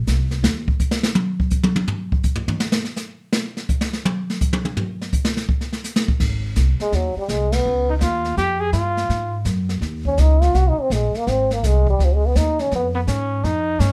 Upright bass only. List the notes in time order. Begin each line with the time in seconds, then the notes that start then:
0.07 C2
0.43 D#2
6.20 G#1
6.56 C2
6.80 muted upright bass stroke
6.92 D#2
7.16 muted upright bass stroke
7.28 C2
7.65 C#2
8.01 D#2
8.37 F2
8.73 G2
9.09 G#2
9.45 F#2
9.81 D#2
10.18 C#2
10.54 C2
10.77 muted upright bass stroke
10.90 A#1
11.14 muted upright bass stroke
11.27 G#1
11.63 C2
11.99 C#2
12.35 D#2
12.72 F2
13.07 G#2
13.44 F2
13.79 G2